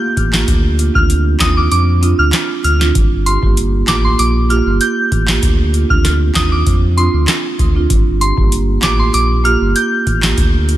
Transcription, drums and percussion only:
0.17 kick medium
0.17 closed hi-hat soft
0.33 snare loud
0.33 clap medium
0.48 kick loud
0.48 closed hi-hat medium
0.79 closed hi-hat medium
0.95 kick medium
1.10 closed hi-hat medium
1.40 kick medium
1.40 snare loud
1.40 clap medium
1.40 closed hi-hat medium
1.72 closed hi-hat medium
2.03 closed hi-hat medium
2.33 snare loud
2.33 clap medium
2.33 closed hi-hat medium
2.64 closed hi-hat soft
2.81 snare medium
2.95 kick loud
2.95 closed hi-hat medium
3.26 closed hi-hat medium
3.43 kick medium
3.57 closed hi-hat medium
3.88 kick medium
3.88 snare loud
3.88 clap medium
3.88 closed hi-hat medium
4.19 closed hi-hat medium
4.50 closed hi-hat medium
4.81 closed hi-hat medium
5.12 kick medium
5.12 closed hi-hat soft
5.28 snare loud
5.28 clap medium
5.43 kick loud
5.43 closed hi-hat medium
5.74 closed hi-hat medium
5.90 kick loud
6.05 cross-stick medium
6.05 snare medium
6.05 closed hi-hat medium
6.35 kick medium
6.35 snare loud
6.35 clap medium
6.35 closed hi-hat medium
6.66 kick loud
6.66 closed hi-hat medium
6.98 closed hi-hat medium
7.28 cross-stick medium
7.28 snare loud
7.28 clap medium
7.28 closed hi-hat medium
7.59 kick medium
7.59 closed hi-hat soft
7.90 kick loud
7.90 closed hi-hat medium
8.21 closed hi-hat medium
8.38 kick medium
8.52 closed hi-hat medium
8.82 kick medium
8.82 snare loud
8.82 clap medium
8.82 closed hi-hat medium
9.14 closed hi-hat medium
9.45 closed hi-hat medium
9.76 closed hi-hat medium
10.07 kick medium
10.07 closed hi-hat soft
10.23 snare loud
10.23 clap medium
10.38 kick loud
10.38 closed hi-hat medium
10.69 closed hi-hat medium

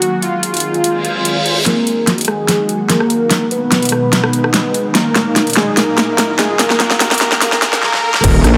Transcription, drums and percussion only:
0.02 closed hi-hat medium
0.22 closed hi-hat soft
0.43 closed hi-hat medium
0.54 closed hi-hat soft
0.57 closed hi-hat medium
0.60 closed hi-hat medium
0.74 closed hi-hat soft
0.84 closed hi-hat medium
1.05 closed hi-hat soft
1.25 closed hi-hat medium
1.46 closed hi-hat soft
1.66 snare soft
1.66 closed hi-hat medium
1.87 closed hi-hat soft
2.07 snare soft
2.07 closed hi-hat medium
2.18 closed hi-hat soft
2.21 closed hi-hat medium
2.25 cross-stick medium
2.25 closed hi-hat medium
2.48 snare soft
2.48 closed hi-hat medium
2.69 closed hi-hat soft
2.90 snare medium
2.90 closed hi-hat medium
3.00 cross-stick medium
3.10 closed hi-hat medium
3.31 snare medium
3.31 closed hi-hat medium
3.51 closed hi-hat medium
3.72 snare medium
3.72 closed hi-hat medium
3.82 closed hi-hat soft
3.85 closed hi-hat medium
3.89 cross-stick medium
3.89 closed hi-hat medium
4.13 snare medium
4.13 closed hi-hat medium
4.24 cross-stick medium
4.33 closed hi-hat medium
4.44 cross-stick medium
4.54 snare medium
4.54 closed hi-hat medium
4.74 closed hi-hat medium
4.95 snare medium
4.95 closed hi-hat medium
5.16 snare medium
5.16 closed hi-hat medium
5.36 snare medium
5.36 closed hi-hat medium
5.47 closed hi-hat soft
5.50 closed hi-hat medium
5.53 snare medium
5.53 closed hi-hat medium
5.77 snare medium
5.77 closed hi-hat medium
5.98 snare medium
5.98 closed hi-hat medium
6.18 snare medium
6.18 closed hi-hat medium
6.39 snare medium
6.39 closed hi-hat medium
6.59 snare medium
6.59 closed hi-hat medium
6.70 snare medium
6.80 snare medium
6.80 closed hi-hat medium
6.91 snare medium
7.00 snare loud
7.00 closed hi-hat medium
7.11 snare medium
7.11 closed hi-hat soft
7.14 closed hi-hat medium
7.18 snare loud
7.18 closed hi-hat medium
7.32 snare medium
7.42 snare loud
7.42 closed hi-hat medium
7.52 snare medium
7.62 snare loud
7.62 closed hi-hat medium
7.73 snare medium
7.83 snare medium
7.93 snare medium
8.14 snare medium
8.24 kick loud
8.24 closed hi-hat medium
8.24 crash loud
8.44 cross-stick medium
8.44 closed hi-hat medium

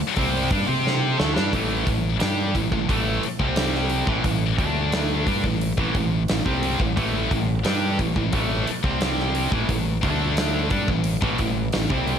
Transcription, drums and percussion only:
0.16 kick medium
0.16 open hi-hat medium
0.51 kick loud
0.51 open hi-hat medium
0.87 snare medium
1.20 snare medium
1.37 snare medium
1.53 kick loud
1.53 open hi-hat medium
1.87 kick medium
1.87 open hi-hat medium
2.20 snare loud
2.20 open hi-hat medium
2.55 kick medium
2.55 open hi-hat medium
2.72 kick medium
2.89 kick medium
2.89 open hi-hat medium
3.23 open hi-hat medium
3.40 kick medium
3.56 snare loud
3.56 open hi-hat medium
3.75 snare soft
3.90 open hi-hat medium
4.07 kick loud
4.24 kick medium
4.24 open hi-hat medium
4.58 kick medium
4.58 open hi-hat medium
4.92 snare loud
4.92 open hi-hat medium
5.27 kick loud
5.27 open hi-hat medium
5.44 kick medium
5.61 open hi-hat medium
5.78 kick loud
5.95 kick medium
5.95 open hi-hat soft
6.28 snare loud
6.28 open hi-hat medium
6.46 kick loud
6.63 open hi-hat medium
6.80 kick medium
6.97 kick loud
6.97 open hi-hat medium
7.31 kick medium
7.31 open hi-hat medium
7.65 snare loud
7.65 open hi-hat medium
7.99 kick medium
7.99 open hi-hat medium
8.16 kick medium
8.33 kick loud
8.33 open hi-hat medium
8.67 open hi-hat medium
8.84 kick loud
9.01 snare loud
9.01 open hi-hat medium
9.19 snare soft
9.35 open hi-hat medium
9.52 kick loud
9.69 kick medium
9.69 open hi-hat medium
10.03 kick loud
10.03 open hi-hat medium
10.37 snare loud
10.37 open hi-hat medium
10.70 kick loud
10.70 open hi-hat medium
10.88 kick medium
11.04 open hi-hat medium
11.22 kick loud
11.38 kick medium
11.38 open hi-hat medium
11.72 snare medium
11.72 open hi-hat medium
11.90 kick loud
12.07 open hi-hat medium

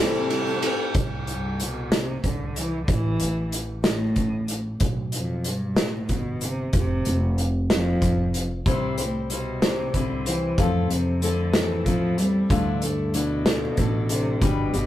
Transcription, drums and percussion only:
0.14 tambourine soft
0.30 ride medium
0.47 tambourine soft
0.62 ride medium
0.62 tambourine soft
0.94 kick loud
0.94 closed hi-hat medium
1.27 closed hi-hat soft
1.60 closed hi-hat medium
1.92 snare loud
1.92 closed hi-hat medium
2.24 kick medium
2.24 closed hi-hat soft
2.56 closed hi-hat medium
2.88 kick loud
2.88 closed hi-hat medium
3.20 closed hi-hat medium
3.52 closed hi-hat medium
3.84 snare loud
3.84 closed hi-hat medium
4.16 kick medium
4.16 closed hi-hat medium
4.48 closed hi-hat medium
4.80 kick medium
4.80 closed hi-hat medium
5.12 closed hi-hat medium
5.44 closed hi-hat soft
5.76 snare loud
5.76 closed hi-hat medium
6.09 kick medium
6.09 closed hi-hat soft
6.41 closed hi-hat medium
6.73 kick medium
6.73 closed hi-hat medium
7.05 closed hi-hat soft
7.38 closed hi-hat soft
7.70 snare loud
7.70 closed hi-hat medium
8.02 kick medium
8.02 closed hi-hat medium
8.34 closed hi-hat medium
8.66 kick medium
8.66 closed hi-hat medium
8.98 closed hi-hat medium
9.30 closed hi-hat soft
9.62 snare loud
9.62 closed hi-hat medium
9.94 kick medium
9.94 closed hi-hat medium
10.26 closed hi-hat medium
10.58 kick loud
10.58 closed hi-hat medium
10.90 closed hi-hat medium
11.22 closed hi-hat soft
11.54 snare loud
11.54 closed hi-hat medium
11.86 kick medium
11.86 closed hi-hat medium
12.18 closed hi-hat soft
12.50 kick loud
12.50 closed hi-hat medium
12.82 closed hi-hat medium
13.14 closed hi-hat medium
13.46 snare loud
13.46 closed hi-hat medium
13.77 kick medium
13.77 closed hi-hat medium
14.09 closed hi-hat medium
14.42 kick medium
14.42 closed hi-hat medium
14.74 closed hi-hat soft

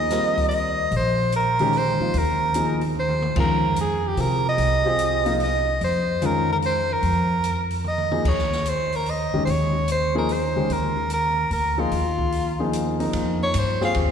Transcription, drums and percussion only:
0.10 snare soft
0.10 closed hi-hat soft
0.38 kick medium
0.38 open hi-hat soft
0.51 open hi-hat soft
0.91 open hi-hat soft
1.32 closed hi-hat soft
1.59 open hi-hat soft
1.73 open hi-hat soft
2.14 open hi-hat soft
2.54 closed hi-hat medium
2.81 open hi-hat soft
2.95 mid tom soft
3.09 mid tom medium
3.22 mid tom medium
3.36 kick medium
3.36 crash medium
3.76 closed hi-hat medium
4.17 open hi-hat soft
4.58 open hi-hat soft
4.99 closed hi-hat medium
5.26 open hi-hat soft
5.40 open hi-hat soft
5.81 open hi-hat soft
6.22 closed hi-hat soft
6.62 open hi-hat soft
7.03 open hi-hat soft
7.44 closed hi-hat soft
7.71 open hi-hat soft
7.84 mid tom soft
7.98 mid tom medium
8.12 mid tom medium
8.25 kick medium
8.25 crash medium
8.39 snare soft
8.52 snare soft
8.66 closed hi-hat soft
8.92 open hi-hat soft
9.06 open hi-hat soft
9.47 open hi-hat soft
9.88 closed hi-hat soft
10.29 open hi-hat soft
10.70 open hi-hat soft
11.10 closed hi-hat soft
11.51 open hi-hat soft
11.91 open hi-hat soft
12.19 kick soft
12.32 open hi-hat soft
12.73 closed hi-hat medium
13.00 open hi-hat soft
13.13 ride medium
13.54 hi-hat pedal medium
13.54 ride medium
13.81 snare soft
13.95 ride medium

